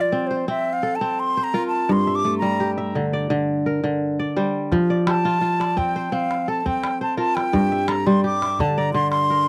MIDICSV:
0, 0, Header, 1, 4, 480
1, 0, Start_track
1, 0, Key_signature, -1, "major"
1, 0, Tempo, 705882
1, 1287, Time_signature, 4, 2, 24, 8
1, 6448, End_track
2, 0, Start_track
2, 0, Title_t, "Flute"
2, 0, Program_c, 0, 73
2, 7, Note_on_c, 0, 74, 77
2, 183, Note_on_c, 0, 72, 78
2, 193, Note_off_c, 0, 74, 0
2, 330, Note_off_c, 0, 72, 0
2, 334, Note_on_c, 0, 76, 90
2, 495, Note_on_c, 0, 77, 84
2, 505, Note_off_c, 0, 76, 0
2, 649, Note_on_c, 0, 81, 86
2, 659, Note_off_c, 0, 77, 0
2, 813, Note_on_c, 0, 84, 94
2, 823, Note_off_c, 0, 81, 0
2, 975, Note_on_c, 0, 82, 97
2, 986, Note_off_c, 0, 84, 0
2, 1131, Note_off_c, 0, 82, 0
2, 1140, Note_on_c, 0, 81, 91
2, 1306, Note_on_c, 0, 84, 100
2, 1316, Note_off_c, 0, 81, 0
2, 1463, Note_on_c, 0, 86, 102
2, 1473, Note_off_c, 0, 84, 0
2, 1615, Note_off_c, 0, 86, 0
2, 1619, Note_on_c, 0, 82, 90
2, 1836, Note_off_c, 0, 82, 0
2, 3453, Note_on_c, 0, 81, 95
2, 3927, Note_on_c, 0, 79, 86
2, 3937, Note_off_c, 0, 81, 0
2, 4166, Note_on_c, 0, 77, 82
2, 4176, Note_off_c, 0, 79, 0
2, 4412, Note_on_c, 0, 81, 81
2, 4422, Note_off_c, 0, 77, 0
2, 4488, Note_off_c, 0, 81, 0
2, 4488, Note_on_c, 0, 81, 59
2, 4532, Note_on_c, 0, 79, 83
2, 4542, Note_off_c, 0, 81, 0
2, 4770, Note_off_c, 0, 79, 0
2, 4774, Note_on_c, 0, 81, 90
2, 4880, Note_off_c, 0, 81, 0
2, 4885, Note_on_c, 0, 81, 89
2, 4998, Note_on_c, 0, 79, 95
2, 5008, Note_off_c, 0, 81, 0
2, 5363, Note_on_c, 0, 82, 99
2, 5373, Note_off_c, 0, 79, 0
2, 5484, Note_on_c, 0, 84, 99
2, 5494, Note_off_c, 0, 82, 0
2, 5603, Note_off_c, 0, 84, 0
2, 5608, Note_on_c, 0, 86, 101
2, 5850, Note_on_c, 0, 81, 93
2, 5860, Note_off_c, 0, 86, 0
2, 5969, Note_on_c, 0, 82, 86
2, 5979, Note_off_c, 0, 81, 0
2, 6071, Note_off_c, 0, 82, 0
2, 6075, Note_on_c, 0, 84, 103
2, 6189, Note_off_c, 0, 84, 0
2, 6193, Note_on_c, 0, 84, 102
2, 6448, Note_off_c, 0, 84, 0
2, 6448, End_track
3, 0, Start_track
3, 0, Title_t, "Kora"
3, 0, Program_c, 1, 46
3, 0, Note_on_c, 1, 53, 83
3, 0, Note_on_c, 1, 65, 65
3, 0, Note_on_c, 1, 67, 64
3, 0, Note_on_c, 1, 74, 64
3, 84, Note_on_c, 1, 60, 74
3, 208, Note_on_c, 1, 72, 66
3, 324, Note_off_c, 1, 60, 0
3, 326, Note_on_c, 1, 60, 90
3, 563, Note_on_c, 1, 69, 64
3, 570, Note_off_c, 1, 67, 0
3, 685, Note_off_c, 1, 60, 0
3, 688, Note_on_c, 1, 60, 72
3, 720, Note_off_c, 1, 74, 0
3, 874, Note_off_c, 1, 65, 0
3, 930, Note_off_c, 1, 72, 0
3, 933, Note_on_c, 1, 72, 67
3, 957, Note_off_c, 1, 53, 0
3, 1045, Note_on_c, 1, 70, 61
3, 1048, Note_on_c, 1, 65, 81
3, 1086, Note_off_c, 1, 69, 0
3, 1286, Note_on_c, 1, 43, 82
3, 1409, Note_on_c, 1, 76, 68
3, 1450, Note_off_c, 1, 65, 0
3, 1527, Note_on_c, 1, 57, 65
3, 1568, Note_off_c, 1, 70, 0
3, 1646, Note_on_c, 1, 55, 75
3, 1740, Note_off_c, 1, 72, 0
3, 1768, Note_on_c, 1, 67, 64
3, 1885, Note_off_c, 1, 76, 0
3, 1887, Note_on_c, 1, 76, 66
3, 1912, Note_off_c, 1, 60, 0
3, 2008, Note_on_c, 1, 50, 69
3, 2041, Note_off_c, 1, 55, 0
3, 2130, Note_on_c, 1, 74, 65
3, 2237, Note_off_c, 1, 50, 0
3, 2245, Note_on_c, 1, 50, 86
3, 2490, Note_on_c, 1, 70, 62
3, 2531, Note_off_c, 1, 57, 0
3, 2590, Note_off_c, 1, 76, 0
3, 2600, Note_off_c, 1, 50, 0
3, 2608, Note_on_c, 1, 50, 72
3, 2728, Note_off_c, 1, 67, 0
3, 2849, Note_off_c, 1, 74, 0
3, 2852, Note_on_c, 1, 74, 66
3, 2877, Note_off_c, 1, 43, 0
3, 2968, Note_on_c, 1, 55, 76
3, 2970, Note_on_c, 1, 72, 61
3, 3211, Note_on_c, 1, 53, 90
3, 3240, Note_off_c, 1, 50, 0
3, 3240, Note_off_c, 1, 55, 0
3, 3329, Note_off_c, 1, 74, 0
3, 3332, Note_on_c, 1, 74, 68
3, 3356, Note_off_c, 1, 70, 0
3, 3446, Note_on_c, 1, 67, 68
3, 3570, Note_on_c, 1, 65, 81
3, 3678, Note_off_c, 1, 65, 0
3, 3681, Note_on_c, 1, 65, 66
3, 3778, Note_off_c, 1, 72, 0
3, 3804, Note_off_c, 1, 74, 0
3, 3806, Note_on_c, 1, 74, 62
3, 3922, Note_on_c, 1, 60, 78
3, 4051, Note_on_c, 1, 72, 64
3, 4160, Note_off_c, 1, 60, 0
3, 4163, Note_on_c, 1, 60, 79
3, 4406, Note_on_c, 1, 69, 65
3, 4407, Note_off_c, 1, 67, 0
3, 4524, Note_off_c, 1, 60, 0
3, 4527, Note_on_c, 1, 60, 67
3, 4560, Note_off_c, 1, 74, 0
3, 4710, Note_off_c, 1, 65, 0
3, 4764, Note_off_c, 1, 72, 0
3, 4767, Note_on_c, 1, 72, 63
3, 4802, Note_off_c, 1, 53, 0
3, 4878, Note_on_c, 1, 65, 73
3, 4879, Note_on_c, 1, 70, 63
3, 4920, Note_off_c, 1, 69, 0
3, 5122, Note_on_c, 1, 43, 91
3, 5249, Note_on_c, 1, 76, 65
3, 5290, Note_off_c, 1, 65, 0
3, 5361, Note_on_c, 1, 69, 66
3, 5402, Note_off_c, 1, 70, 0
3, 5485, Note_on_c, 1, 55, 80
3, 5575, Note_off_c, 1, 72, 0
3, 5603, Note_on_c, 1, 67, 72
3, 5725, Note_off_c, 1, 76, 0
3, 5727, Note_on_c, 1, 76, 61
3, 5751, Note_off_c, 1, 60, 0
3, 5849, Note_on_c, 1, 50, 80
3, 5879, Note_off_c, 1, 55, 0
3, 5968, Note_on_c, 1, 74, 64
3, 6074, Note_off_c, 1, 50, 0
3, 6082, Note_on_c, 1, 50, 84
3, 6257, Note_off_c, 1, 69, 0
3, 6326, Note_on_c, 1, 70, 65
3, 6430, Note_off_c, 1, 76, 0
3, 6442, Note_off_c, 1, 50, 0
3, 6448, Note_off_c, 1, 43, 0
3, 6448, Note_off_c, 1, 67, 0
3, 6448, Note_off_c, 1, 70, 0
3, 6448, Note_off_c, 1, 74, 0
3, 6448, End_track
4, 0, Start_track
4, 0, Title_t, "Calabash"
4, 3207, Note_on_c, 9, 36, 61
4, 3207, Note_on_c, 9, 38, 21
4, 3275, Note_off_c, 9, 36, 0
4, 3275, Note_off_c, 9, 38, 0
4, 3448, Note_on_c, 9, 38, 67
4, 3516, Note_off_c, 9, 38, 0
4, 3815, Note_on_c, 9, 38, 53
4, 3883, Note_off_c, 9, 38, 0
4, 3929, Note_on_c, 9, 36, 60
4, 3997, Note_off_c, 9, 36, 0
4, 4289, Note_on_c, 9, 38, 44
4, 4357, Note_off_c, 9, 38, 0
4, 4531, Note_on_c, 9, 36, 48
4, 4599, Note_off_c, 9, 36, 0
4, 4648, Note_on_c, 9, 38, 61
4, 4716, Note_off_c, 9, 38, 0
4, 5010, Note_on_c, 9, 38, 54
4, 5078, Note_off_c, 9, 38, 0
4, 5124, Note_on_c, 9, 36, 70
4, 5124, Note_on_c, 9, 38, 24
4, 5192, Note_off_c, 9, 36, 0
4, 5192, Note_off_c, 9, 38, 0
4, 5359, Note_on_c, 9, 38, 69
4, 5427, Note_off_c, 9, 38, 0
4, 5727, Note_on_c, 9, 38, 52
4, 5795, Note_off_c, 9, 38, 0
4, 5842, Note_on_c, 9, 36, 67
4, 5910, Note_off_c, 9, 36, 0
4, 6199, Note_on_c, 9, 38, 47
4, 6267, Note_off_c, 9, 38, 0
4, 6448, End_track
0, 0, End_of_file